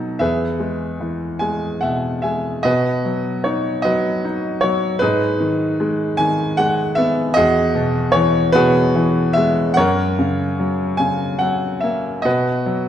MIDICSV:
0, 0, Header, 1, 2, 480
1, 0, Start_track
1, 0, Key_signature, 5, "major"
1, 0, Tempo, 814111
1, 121, Time_signature, 6, 3, 24, 8
1, 2043, Tempo, 780234
1, 4923, Tempo, 823045
1, 7686, End_track
2, 0, Start_track
2, 0, Title_t, "Grand piano"
2, 0, Program_c, 0, 0
2, 0, Control_c, 0, 64, 127
2, 0, Note_on_c, 0, 47, 50
2, 0, Note_on_c, 0, 54, 37
2, 0, Note_on_c, 0, 63, 36
2, 0, Note_on_c, 0, 66, 47
2, 0, Note_on_c, 0, 69, 47
2, 0, Note_on_c, 0, 75, 61
2, 94, Note_off_c, 0, 75, 0
2, 97, Note_off_c, 0, 66, 0
2, 97, Note_off_c, 0, 69, 0
2, 100, Note_off_c, 0, 47, 0
2, 106, Note_off_c, 0, 54, 0
2, 109, Note_off_c, 0, 63, 0
2, 113, Note_on_c, 0, 76, 58
2, 116, Note_on_c, 0, 40, 42
2, 123, Note_on_c, 0, 71, 42
2, 124, Note_on_c, 0, 68, 44
2, 128, Control_c, 0, 64, 0
2, 249, Control_c, 0, 64, 127
2, 352, Note_on_c, 0, 56, 31
2, 592, Note_on_c, 0, 52, 31
2, 822, Note_on_c, 0, 80, 58
2, 823, Note_off_c, 0, 56, 0
2, 832, Note_on_c, 0, 56, 36
2, 1048, Note_off_c, 0, 76, 0
2, 1053, Note_off_c, 0, 68, 0
2, 1053, Note_off_c, 0, 71, 0
2, 1065, Note_on_c, 0, 78, 50
2, 1076, Note_off_c, 0, 80, 0
2, 1076, Note_on_c, 0, 76, 37
2, 1078, Note_on_c, 0, 47, 27
2, 1300, Note_off_c, 0, 76, 0
2, 1308, Note_on_c, 0, 76, 43
2, 1310, Note_off_c, 0, 56, 0
2, 1318, Note_on_c, 0, 80, 36
2, 1319, Note_on_c, 0, 56, 26
2, 1320, Note_off_c, 0, 78, 0
2, 1537, Note_off_c, 0, 40, 0
2, 1537, Note_off_c, 0, 52, 0
2, 1546, Note_off_c, 0, 80, 0
2, 1549, Note_off_c, 0, 47, 0
2, 1550, Note_on_c, 0, 75, 74
2, 1556, Note_off_c, 0, 56, 0
2, 1560, Note_on_c, 0, 47, 35
2, 1562, Note_on_c, 0, 66, 51
2, 1564, Note_on_c, 0, 71, 53
2, 1566, Note_off_c, 0, 76, 0
2, 1571, Control_c, 0, 64, 0
2, 1666, Control_c, 0, 64, 127
2, 1799, Note_on_c, 0, 54, 36
2, 2013, Note_off_c, 0, 75, 0
2, 2028, Note_on_c, 0, 73, 49
2, 2038, Note_on_c, 0, 63, 37
2, 2260, Note_off_c, 0, 66, 0
2, 2261, Note_off_c, 0, 71, 0
2, 2263, Note_on_c, 0, 75, 70
2, 2274, Note_off_c, 0, 54, 0
2, 2277, Note_on_c, 0, 71, 44
2, 2279, Note_on_c, 0, 66, 45
2, 2283, Note_on_c, 0, 54, 35
2, 2285, Note_off_c, 0, 73, 0
2, 2514, Note_off_c, 0, 63, 0
2, 2523, Note_on_c, 0, 63, 38
2, 2746, Note_on_c, 0, 73, 69
2, 2752, Note_off_c, 0, 54, 0
2, 2761, Note_on_c, 0, 54, 42
2, 2767, Note_off_c, 0, 75, 0
2, 2973, Note_off_c, 0, 71, 0
2, 2974, Note_off_c, 0, 66, 0
2, 2976, Note_off_c, 0, 47, 0
2, 2982, Note_on_c, 0, 71, 77
2, 2987, Note_off_c, 0, 63, 0
2, 2994, Note_off_c, 0, 54, 0
2, 2997, Note_on_c, 0, 68, 52
2, 2998, Note_on_c, 0, 44, 50
2, 3001, Note_off_c, 0, 73, 0
2, 3001, Note_on_c, 0, 63, 55
2, 3011, Control_c, 0, 64, 0
2, 3101, Control_c, 0, 64, 127
2, 3235, Note_on_c, 0, 51, 44
2, 3480, Note_on_c, 0, 56, 46
2, 3696, Note_off_c, 0, 68, 0
2, 3698, Note_off_c, 0, 63, 0
2, 3709, Note_off_c, 0, 51, 0
2, 3709, Note_on_c, 0, 80, 82
2, 3718, Note_on_c, 0, 51, 48
2, 3734, Note_off_c, 0, 71, 0
2, 3940, Note_off_c, 0, 80, 0
2, 3953, Note_off_c, 0, 56, 0
2, 3955, Note_on_c, 0, 78, 80
2, 3962, Note_on_c, 0, 56, 43
2, 4182, Note_off_c, 0, 78, 0
2, 4188, Note_on_c, 0, 76, 77
2, 4203, Note_on_c, 0, 59, 51
2, 4415, Note_off_c, 0, 44, 0
2, 4417, Note_off_c, 0, 51, 0
2, 4426, Note_off_c, 0, 56, 0
2, 4426, Note_on_c, 0, 75, 94
2, 4434, Note_off_c, 0, 59, 0
2, 4441, Note_off_c, 0, 76, 0
2, 4441, Note_on_c, 0, 40, 56
2, 4443, Note_on_c, 0, 66, 63
2, 4448, Note_on_c, 0, 68, 65
2, 4450, Control_c, 0, 64, 0
2, 4538, Control_c, 0, 64, 127
2, 4678, Note_on_c, 0, 47, 55
2, 4891, Note_off_c, 0, 75, 0
2, 4905, Note_on_c, 0, 73, 80
2, 4924, Note_on_c, 0, 52, 51
2, 5135, Note_off_c, 0, 66, 0
2, 5137, Note_off_c, 0, 68, 0
2, 5143, Note_off_c, 0, 47, 0
2, 5144, Note_on_c, 0, 71, 92
2, 5152, Note_on_c, 0, 47, 50
2, 5156, Note_off_c, 0, 73, 0
2, 5159, Note_on_c, 0, 66, 66
2, 5162, Note_on_c, 0, 68, 60
2, 5386, Note_off_c, 0, 52, 0
2, 5394, Note_on_c, 0, 52, 53
2, 5615, Note_on_c, 0, 76, 80
2, 5636, Note_on_c, 0, 56, 48
2, 5639, Note_off_c, 0, 71, 0
2, 5847, Note_off_c, 0, 40, 0
2, 5847, Note_off_c, 0, 47, 0
2, 5849, Note_off_c, 0, 66, 0
2, 5850, Note_off_c, 0, 68, 0
2, 5852, Note_on_c, 0, 78, 87
2, 5857, Note_off_c, 0, 52, 0
2, 5866, Note_off_c, 0, 56, 0
2, 5870, Note_off_c, 0, 76, 0
2, 5870, Note_on_c, 0, 73, 64
2, 5871, Note_on_c, 0, 70, 63
2, 5874, Note_on_c, 0, 42, 54
2, 5879, Control_c, 0, 64, 0
2, 5977, Control_c, 0, 64, 127
2, 6112, Note_on_c, 0, 49, 42
2, 6353, Note_on_c, 0, 54, 37
2, 6568, Note_off_c, 0, 70, 0
2, 6568, Note_off_c, 0, 73, 0
2, 6572, Note_on_c, 0, 80, 69
2, 6577, Note_off_c, 0, 49, 0
2, 6586, Note_on_c, 0, 49, 37
2, 6604, Note_off_c, 0, 78, 0
2, 6805, Note_off_c, 0, 80, 0
2, 6812, Note_on_c, 0, 78, 63
2, 6819, Note_off_c, 0, 54, 0
2, 6828, Note_on_c, 0, 54, 34
2, 7057, Note_on_c, 0, 76, 53
2, 7073, Note_off_c, 0, 78, 0
2, 7075, Note_on_c, 0, 58, 35
2, 7293, Note_off_c, 0, 49, 0
2, 7296, Note_off_c, 0, 42, 0
2, 7299, Note_on_c, 0, 75, 66
2, 7301, Note_off_c, 0, 54, 0
2, 7311, Note_off_c, 0, 58, 0
2, 7316, Note_on_c, 0, 47, 40
2, 7317, Note_off_c, 0, 76, 0
2, 7317, Note_on_c, 0, 66, 53
2, 7319, Note_on_c, 0, 71, 50
2, 7325, Control_c, 0, 64, 0
2, 7430, Control_c, 0, 64, 127
2, 7557, Note_on_c, 0, 54, 38
2, 7686, Note_off_c, 0, 47, 0
2, 7686, Note_off_c, 0, 54, 0
2, 7686, Note_off_c, 0, 66, 0
2, 7686, Note_off_c, 0, 71, 0
2, 7686, Note_off_c, 0, 75, 0
2, 7686, End_track
0, 0, End_of_file